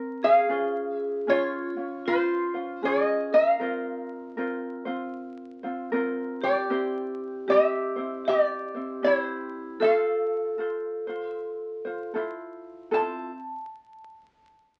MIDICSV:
0, 0, Header, 1, 4, 480
1, 0, Start_track
1, 0, Key_signature, -1, "major"
1, 0, Tempo, 776197
1, 306, Time_signature, 4, 2, 24, 8
1, 9148, End_track
2, 0, Start_track
2, 0, Title_t, "Resonator guitar played with a steel bar"
2, 0, Program_c, 0, 25
2, 148, Note_on_c, 0, 68, 73
2, 150, Note_on_c, 0, 77, 101
2, 589, Note_off_c, 0, 77, 0
2, 589, Note_on_c, 0, 76, 101
2, 772, Note_off_c, 0, 68, 0
2, 801, Note_on_c, 0, 65, 77
2, 802, Note_on_c, 0, 73, 102
2, 815, Note_off_c, 0, 76, 0
2, 1249, Note_off_c, 0, 65, 0
2, 1281, Note_off_c, 0, 73, 0
2, 1283, Note_on_c, 0, 65, 76
2, 1284, Note_on_c, 0, 72, 91
2, 1730, Note_off_c, 0, 65, 0
2, 1763, Note_off_c, 0, 72, 0
2, 1764, Note_on_c, 0, 75, 91
2, 1765, Note_on_c, 0, 68, 72
2, 2036, Note_off_c, 0, 75, 0
2, 2037, Note_off_c, 0, 68, 0
2, 2063, Note_on_c, 0, 70, 75
2, 2065, Note_on_c, 0, 77, 91
2, 3471, Note_off_c, 0, 70, 0
2, 3471, Note_off_c, 0, 77, 0
2, 3979, Note_on_c, 0, 74, 86
2, 3983, Note_on_c, 0, 67, 69
2, 4609, Note_off_c, 0, 67, 0
2, 4635, Note_off_c, 0, 74, 0
2, 4637, Note_on_c, 0, 76, 109
2, 4646, Note_on_c, 0, 67, 80
2, 5087, Note_off_c, 0, 76, 0
2, 5092, Note_off_c, 0, 67, 0
2, 5118, Note_on_c, 0, 74, 104
2, 5128, Note_on_c, 0, 67, 71
2, 5573, Note_off_c, 0, 67, 0
2, 5593, Note_on_c, 0, 72, 96
2, 5606, Note_on_c, 0, 64, 71
2, 5607, Note_off_c, 0, 74, 0
2, 6052, Note_off_c, 0, 64, 0
2, 6074, Note_on_c, 0, 77, 105
2, 6084, Note_off_c, 0, 72, 0
2, 6086, Note_on_c, 0, 69, 82
2, 6965, Note_off_c, 0, 77, 0
2, 6965, Note_on_c, 0, 76, 105
2, 7487, Note_off_c, 0, 76, 0
2, 7493, Note_off_c, 0, 69, 0
2, 8002, Note_on_c, 0, 81, 84
2, 8277, Note_off_c, 0, 81, 0
2, 9148, End_track
3, 0, Start_track
3, 0, Title_t, "Vibraphone"
3, 0, Program_c, 1, 11
3, 141, Note_on_c, 1, 68, 90
3, 767, Note_off_c, 1, 68, 0
3, 793, Note_on_c, 1, 65, 75
3, 1245, Note_off_c, 1, 65, 0
3, 1271, Note_on_c, 1, 65, 77
3, 1724, Note_off_c, 1, 65, 0
3, 1750, Note_on_c, 1, 68, 75
3, 2029, Note_off_c, 1, 68, 0
3, 2057, Note_on_c, 1, 70, 78
3, 3468, Note_off_c, 1, 70, 0
3, 3967, Note_on_c, 1, 67, 81
3, 4601, Note_off_c, 1, 67, 0
3, 4624, Note_on_c, 1, 67, 85
3, 5081, Note_off_c, 1, 67, 0
3, 5104, Note_on_c, 1, 67, 82
3, 5560, Note_off_c, 1, 67, 0
3, 5584, Note_on_c, 1, 64, 73
3, 6041, Note_off_c, 1, 64, 0
3, 6061, Note_on_c, 1, 69, 89
3, 7480, Note_off_c, 1, 69, 0
3, 7992, Note_on_c, 1, 60, 72
3, 8272, Note_off_c, 1, 60, 0
3, 9148, End_track
4, 0, Start_track
4, 0, Title_t, "Ukulele"
4, 0, Program_c, 2, 24
4, 0, Note_on_c, 2, 60, 73
4, 0, Note_on_c, 2, 70, 76
4, 300, Note_off_c, 2, 70, 0
4, 302, Note_off_c, 2, 60, 0
4, 303, Note_on_c, 2, 68, 75
4, 305, Note_on_c, 2, 61, 72
4, 307, Note_on_c, 2, 65, 76
4, 312, Note_on_c, 2, 72, 83
4, 779, Note_off_c, 2, 68, 0
4, 785, Note_off_c, 2, 61, 0
4, 786, Note_on_c, 2, 68, 58
4, 791, Note_on_c, 2, 61, 61
4, 794, Note_off_c, 2, 65, 0
4, 796, Note_on_c, 2, 65, 59
4, 810, Note_off_c, 2, 72, 0
4, 1085, Note_off_c, 2, 65, 0
4, 1088, Note_off_c, 2, 68, 0
4, 1091, Note_off_c, 2, 61, 0
4, 1093, Note_on_c, 2, 65, 50
4, 1098, Note_on_c, 2, 61, 45
4, 1570, Note_on_c, 2, 72, 51
4, 1572, Note_off_c, 2, 65, 0
4, 1573, Note_off_c, 2, 61, 0
4, 1575, Note_on_c, 2, 65, 51
4, 1581, Note_on_c, 2, 61, 42
4, 1745, Note_off_c, 2, 61, 0
4, 1747, Note_off_c, 2, 72, 0
4, 1747, Note_on_c, 2, 68, 58
4, 1749, Note_off_c, 2, 65, 0
4, 1753, Note_on_c, 2, 61, 64
4, 1757, Note_on_c, 2, 65, 64
4, 1759, Note_on_c, 2, 72, 66
4, 2221, Note_off_c, 2, 68, 0
4, 2223, Note_on_c, 2, 70, 79
4, 2225, Note_off_c, 2, 61, 0
4, 2227, Note_on_c, 2, 60, 74
4, 2229, Note_off_c, 2, 65, 0
4, 2231, Note_off_c, 2, 72, 0
4, 2232, Note_on_c, 2, 65, 79
4, 2233, Note_on_c, 2, 72, 82
4, 2695, Note_off_c, 2, 70, 0
4, 2702, Note_on_c, 2, 70, 59
4, 2703, Note_off_c, 2, 65, 0
4, 2705, Note_off_c, 2, 60, 0
4, 2707, Note_on_c, 2, 60, 73
4, 2711, Note_on_c, 2, 65, 73
4, 2714, Note_off_c, 2, 72, 0
4, 2717, Note_on_c, 2, 72, 63
4, 2993, Note_off_c, 2, 72, 0
4, 3001, Note_off_c, 2, 65, 0
4, 3001, Note_on_c, 2, 72, 62
4, 3006, Note_off_c, 2, 70, 0
4, 3007, Note_off_c, 2, 60, 0
4, 3009, Note_on_c, 2, 65, 58
4, 3015, Note_on_c, 2, 60, 52
4, 3481, Note_off_c, 2, 65, 0
4, 3482, Note_off_c, 2, 72, 0
4, 3482, Note_on_c, 2, 72, 61
4, 3488, Note_on_c, 2, 65, 50
4, 3492, Note_off_c, 2, 60, 0
4, 3494, Note_on_c, 2, 60, 47
4, 3657, Note_off_c, 2, 72, 0
4, 3659, Note_off_c, 2, 60, 0
4, 3660, Note_on_c, 2, 70, 76
4, 3664, Note_off_c, 2, 65, 0
4, 3666, Note_on_c, 2, 60, 72
4, 3672, Note_on_c, 2, 65, 73
4, 3674, Note_on_c, 2, 72, 75
4, 4140, Note_off_c, 2, 70, 0
4, 4142, Note_off_c, 2, 60, 0
4, 4143, Note_on_c, 2, 67, 77
4, 4145, Note_on_c, 2, 60, 78
4, 4146, Note_off_c, 2, 65, 0
4, 4148, Note_off_c, 2, 72, 0
4, 4148, Note_on_c, 2, 64, 77
4, 4150, Note_on_c, 2, 72, 97
4, 4616, Note_off_c, 2, 67, 0
4, 4623, Note_on_c, 2, 67, 56
4, 4625, Note_off_c, 2, 60, 0
4, 4627, Note_on_c, 2, 60, 65
4, 4629, Note_off_c, 2, 64, 0
4, 4632, Note_on_c, 2, 64, 56
4, 4634, Note_off_c, 2, 72, 0
4, 4637, Note_on_c, 2, 72, 66
4, 4914, Note_off_c, 2, 72, 0
4, 4921, Note_on_c, 2, 72, 57
4, 4924, Note_off_c, 2, 64, 0
4, 4927, Note_off_c, 2, 67, 0
4, 4929, Note_off_c, 2, 60, 0
4, 4931, Note_on_c, 2, 64, 51
4, 4936, Note_on_c, 2, 60, 47
4, 5407, Note_off_c, 2, 72, 0
4, 5407, Note_on_c, 2, 72, 53
4, 5412, Note_off_c, 2, 64, 0
4, 5415, Note_on_c, 2, 64, 50
4, 5417, Note_off_c, 2, 60, 0
4, 5419, Note_on_c, 2, 60, 47
4, 5581, Note_off_c, 2, 60, 0
4, 5582, Note_off_c, 2, 72, 0
4, 5584, Note_on_c, 2, 67, 62
4, 5586, Note_off_c, 2, 64, 0
4, 5589, Note_on_c, 2, 60, 58
4, 5593, Note_on_c, 2, 64, 69
4, 5597, Note_on_c, 2, 72, 68
4, 6057, Note_off_c, 2, 64, 0
4, 6060, Note_off_c, 2, 60, 0
4, 6060, Note_on_c, 2, 69, 70
4, 6063, Note_on_c, 2, 65, 80
4, 6065, Note_off_c, 2, 67, 0
4, 6067, Note_off_c, 2, 72, 0
4, 6067, Note_on_c, 2, 72, 83
4, 6540, Note_off_c, 2, 69, 0
4, 6543, Note_on_c, 2, 69, 57
4, 6545, Note_off_c, 2, 65, 0
4, 6548, Note_on_c, 2, 65, 64
4, 6554, Note_off_c, 2, 72, 0
4, 6557, Note_on_c, 2, 72, 70
4, 6838, Note_off_c, 2, 72, 0
4, 6846, Note_on_c, 2, 72, 67
4, 6847, Note_off_c, 2, 69, 0
4, 6850, Note_off_c, 2, 65, 0
4, 6859, Note_on_c, 2, 65, 52
4, 7327, Note_off_c, 2, 72, 0
4, 7327, Note_on_c, 2, 72, 61
4, 7337, Note_off_c, 2, 65, 0
4, 7339, Note_on_c, 2, 65, 48
4, 7507, Note_off_c, 2, 65, 0
4, 7507, Note_off_c, 2, 72, 0
4, 7507, Note_on_c, 2, 69, 62
4, 7515, Note_on_c, 2, 65, 66
4, 7517, Note_on_c, 2, 64, 70
4, 7521, Note_on_c, 2, 72, 84
4, 7983, Note_off_c, 2, 69, 0
4, 7985, Note_on_c, 2, 69, 89
4, 7988, Note_off_c, 2, 65, 0
4, 7990, Note_on_c, 2, 65, 77
4, 7995, Note_off_c, 2, 64, 0
4, 7997, Note_off_c, 2, 72, 0
4, 7997, Note_on_c, 2, 64, 75
4, 7999, Note_on_c, 2, 72, 91
4, 8229, Note_off_c, 2, 69, 0
4, 8232, Note_off_c, 2, 65, 0
4, 8235, Note_off_c, 2, 64, 0
4, 8236, Note_off_c, 2, 72, 0
4, 9148, End_track
0, 0, End_of_file